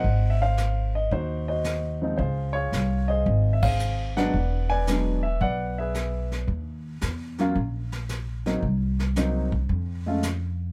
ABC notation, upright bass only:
X:1
M:4/4
L:1/8
Q:"Swing" 1/4=112
K:Ebdor
V:1 name="Upright bass" clef=bass
A,,,4 E,,4 | D,,2 C,,2 A,,,4 | =E,,,4 =B,,,4 | E,,2 =E,,2 B,,,4 |
C,,4 F,,4 |]